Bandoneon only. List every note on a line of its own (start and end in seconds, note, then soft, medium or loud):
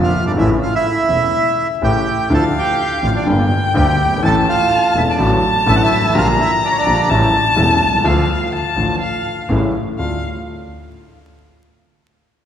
0.03 0.25 F4 medium
0.03 0.25 F5 medium
0.27 0.32 D4 medium
0.27 0.32 D5 medium
0.38 0.50 E4 medium
0.38 0.49 E5 medium
0.63 0.74 F4 medium
0.63 0.75 F5 medium
0.75 1.67 E4 medium
0.75 1.67 E5 medium
1.84 2.28 G4 medium
1.84 2.33 G5 medium
2.34 2.44 A4 medium
2.34 2.45 A5 medium
2.58 3.01 G4 medium
2.58 3.06 G5 medium
3.05 3.10 F4 medium
3.05 3.10 F5 medium
3.16 3.26 D4 medium
3.16 3.28 D5 medium
3.77 4.21 G4 medium
3.77 4.21 G5 medium
4.25 4.36 A4 medium
4.25 4.36 A5 medium
4.48 4.92 F4 medium
4.48 4.98 F5 medium
4.98 5.02 E4 medium
4.98 5.03 E5 medium
5.09 5.30 D4 medium
5.09 5.31 D5 medium
5.69 5.74 E4 medium
5.69 5.75 E5 medium
5.76 5.82 F#5 medium
5.83 6.13 E4 medium
5.83 6.17 E5 medium
6.17 6.27 F4 medium
6.17 6.28 F5 loud
6.41 6.51 E4 medium
6.41 6.52 E5 medium
6.65 6.70 D4 medium
6.65 6.70 D5 medium
6.71 6.77 C#5 medium
6.78 7.08 D4 medium
6.78 7.09 D5 medium